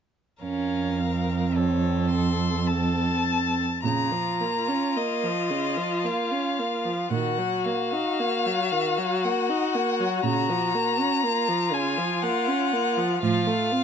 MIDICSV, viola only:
0, 0, Header, 1, 2, 480
1, 0, Start_track
1, 0, Key_signature, -5, "minor"
1, 0, Tempo, 1117318
1, 187, Time_signature, 3, 2, 24, 8
1, 1144, Tempo, 1183432
1, 1624, Tempo, 1117318
1, 2104, Tempo, 1073345
1, 3544, Tempo, 1054482
1, 4024, Tempo, 998336
1, 6235, End_track
2, 0, Start_track
2, 0, Title_t, "Viola"
2, 0, Program_c, 0, 41
2, 183, Note_on_c, 0, 61, 30
2, 430, Note_on_c, 0, 60, 29
2, 436, Note_off_c, 0, 61, 0
2, 1140, Note_off_c, 0, 60, 0
2, 1143, Note_on_c, 0, 60, 35
2, 1530, Note_off_c, 0, 60, 0
2, 1622, Note_on_c, 0, 49, 33
2, 1741, Note_on_c, 0, 53, 29
2, 1748, Note_off_c, 0, 49, 0
2, 1865, Note_on_c, 0, 58, 30
2, 1872, Note_off_c, 0, 53, 0
2, 1983, Note_on_c, 0, 61, 31
2, 1989, Note_off_c, 0, 58, 0
2, 2105, Note_on_c, 0, 58, 31
2, 2111, Note_off_c, 0, 61, 0
2, 2226, Note_on_c, 0, 53, 31
2, 2233, Note_off_c, 0, 58, 0
2, 2345, Note_on_c, 0, 49, 32
2, 2352, Note_off_c, 0, 53, 0
2, 2464, Note_on_c, 0, 53, 32
2, 2471, Note_off_c, 0, 49, 0
2, 2587, Note_on_c, 0, 58, 30
2, 2593, Note_off_c, 0, 53, 0
2, 2708, Note_on_c, 0, 61, 31
2, 2715, Note_off_c, 0, 58, 0
2, 2832, Note_on_c, 0, 58, 33
2, 2838, Note_off_c, 0, 61, 0
2, 2948, Note_on_c, 0, 53, 32
2, 2955, Note_off_c, 0, 58, 0
2, 3064, Note_off_c, 0, 53, 0
2, 3067, Note_on_c, 0, 51, 36
2, 3187, Note_on_c, 0, 54, 31
2, 3194, Note_off_c, 0, 51, 0
2, 3310, Note_on_c, 0, 58, 31
2, 3316, Note_off_c, 0, 54, 0
2, 3429, Note_on_c, 0, 63, 32
2, 3436, Note_off_c, 0, 58, 0
2, 3549, Note_on_c, 0, 58, 35
2, 3556, Note_off_c, 0, 63, 0
2, 3673, Note_on_c, 0, 54, 34
2, 3680, Note_off_c, 0, 58, 0
2, 3789, Note_on_c, 0, 51, 32
2, 3796, Note_off_c, 0, 54, 0
2, 3908, Note_on_c, 0, 54, 33
2, 3914, Note_off_c, 0, 51, 0
2, 4028, Note_on_c, 0, 58, 34
2, 4035, Note_off_c, 0, 54, 0
2, 4148, Note_on_c, 0, 63, 36
2, 4155, Note_off_c, 0, 58, 0
2, 4271, Note_on_c, 0, 58, 34
2, 4278, Note_off_c, 0, 63, 0
2, 4390, Note_on_c, 0, 54, 35
2, 4397, Note_off_c, 0, 58, 0
2, 4506, Note_off_c, 0, 54, 0
2, 4508, Note_on_c, 0, 49, 38
2, 4628, Note_on_c, 0, 53, 35
2, 4635, Note_off_c, 0, 49, 0
2, 4750, Note_on_c, 0, 58, 36
2, 4757, Note_off_c, 0, 53, 0
2, 4867, Note_on_c, 0, 61, 35
2, 4874, Note_off_c, 0, 58, 0
2, 4986, Note_on_c, 0, 58, 38
2, 4993, Note_off_c, 0, 61, 0
2, 5104, Note_on_c, 0, 53, 39
2, 5111, Note_off_c, 0, 58, 0
2, 5220, Note_on_c, 0, 49, 38
2, 5227, Note_off_c, 0, 53, 0
2, 5341, Note_on_c, 0, 53, 38
2, 5348, Note_off_c, 0, 49, 0
2, 5462, Note_on_c, 0, 58, 37
2, 5469, Note_off_c, 0, 53, 0
2, 5580, Note_on_c, 0, 61, 36
2, 5587, Note_off_c, 0, 58, 0
2, 5701, Note_on_c, 0, 58, 41
2, 5708, Note_off_c, 0, 61, 0
2, 5820, Note_on_c, 0, 53, 44
2, 5827, Note_off_c, 0, 58, 0
2, 5939, Note_off_c, 0, 53, 0
2, 5942, Note_on_c, 0, 53, 44
2, 6058, Note_on_c, 0, 57, 39
2, 6065, Note_off_c, 0, 53, 0
2, 6179, Note_on_c, 0, 60, 40
2, 6186, Note_off_c, 0, 57, 0
2, 6235, Note_off_c, 0, 60, 0
2, 6235, End_track
0, 0, End_of_file